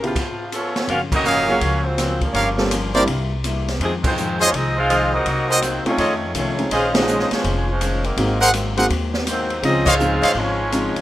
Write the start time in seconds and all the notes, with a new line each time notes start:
Already playing: A#1
0.02 A2 B2 C#3 F3 B3 E4 F4 G4, ride
0.16 kick, crash, ride
0.52 F3 A3 B3 C#4 F4 A4 C#5, hi-hat pedal, ride
0.76 snare, ride
0.87 F#1 F#2 F3 A#3 C#4 F4 F#4 A#4 F5, ride
1.11 F#3 A#3 C#4 D#4 F#4 A#4 D#5, kick, crash
1.25 F#2 F3 A#3 C#4 A#4 C#5 F5, hi-hat pedal
1.47 F#3 A#3 C#4 F4 F#4 G#4 C#5
1.61 C#2 F#2 F3 A#3 C#4, ride
1.84 C#3 F#3 A#3 C4 F4 F#4 C5
1.98 F#2 F3 A#3 C#4, snare, hi-hat pedal, ride
2.21 D2 C#3 F3 G3 A#3 C#4 F4 A#4, kick, ride
2.33 G1 G2 F3 A#3 C#4 G4 A#4 C#5 F5, ride
2.58 G3 A#3 C#4 F4 A4, snare
2.71 G2 F3 A#3 C#4, hi-hat pedal, ride
2.94 G3 A#3 C4 D4 E4 G4 A#4 C5 D5, ride
3.07 C2 C3 G3 A#3 E4, ride
3.44 C3 G3 A#3 E4, hi-hat pedal, ride
3.68 snare, ride
3.80 F2 C3 D#3 F3 G#3 C4 D#4 G#4, ride
4.03 D#3 G#3 C4 F4 C5, kick, crash
4.07 D#4
4.17 F2 D#3 G#3 C4, hi-hat pedal
4.40 A#3 C#4 D#4 F4 F#4 G#4 C5 C#5 D#5
4.53 C2 F2 D#3 G#3 C4 D#4 F4 G#4 D#5, ride
4.76 G#3 C4 D#4 F4 G#4 C5 F5
4.89 F2 D#3 G#3 C4 F4 G#4 C5 D#5, hi-hat pedal, ride
5.12 F#3 A#3 C4 D#4 F#4 A#4 D#5
5.25 C2 C3 F#3 A#3 D#4, ride
5.49 D#3 F#3 A#3 C4 D#4 F#4 A#4 C5 D#5
5.62 C3 F#3 A#3 D#4, hi-hat pedal, ride
5.85 D#3 A3 C4 C#4 D#4 F4 C#5, muted upright bass stroke, ride
5.98 F2 D#3 A3 C#4 F4 A4 C#5 D#5, ride
6.34 C2 F2 D#3 A3 C#4 D#4 F4 C#5, hi-hat pedal, ride
6.58 G#3 C4 C#4 D#4 G#4, ride
6.71 A#1 A#2 D#3 G#3 C#4 F4 G#4 C5 D#5 F5, ride
6.94 F3 G#3 C#4 D#4 F4 G#4 C5 D#5, snare, ride
7.07 A#2 D#3 G#3 C#4, hi-hat pedal
7.19 snare
7.31 F3 G#3 C#4 F4 C5 C#5, muted upright bass stroke, snare, ride
7.44 F1 A#2 D#3 G#3 C#4, ride
7.68 F3 G#3 C#4 F4 C5
7.81 A#2 D#3 G#3 C#4, hi-hat pedal, ride
8.04 D#3 F#3 A#3 C4 D#4 A#4, ride
8.17 G#1 G#2 F#3 G#3 A#3 C4 D#4 F#4, ride
8.41 G#4 A#4 C5 F#5
8.54 G#2 F#3 A#3 C4, hi-hat pedal, ride
8.77 G#3 A#3 C4 D#4 F#4 G#4 A#4 C5 F#5, ride
8.90 D#2 G#2 F#3 A#3 C4, ride
9.14 snare
9.26 G#2 D#3 F#3 A#3 C4 D#4 F#4 C5, hi-hat pedal, ride
9.50 ride
9.62 C#2 C#3 F3 G#3 C4 C#4 D#4 F4 G#4 D#5, ride
9.86 G#3 C4 D#4 F4 G#4 C5 C#5 D#5 F5, kick, crash
9.99 C#3 F3 G#3 C4 C#4 D#4 G#4, hi-hat pedal
10.22 D2 C5 C#5 D#5 F5, ride
10.35 G#1 C#3 F3 G#3 C4 C#4 D#4 F4 C#5
10.72 C#3 F3 G#3 C4 C#4 D#4 F4, hi-hat pedal, ride
10.95 muted upright bass stroke, ride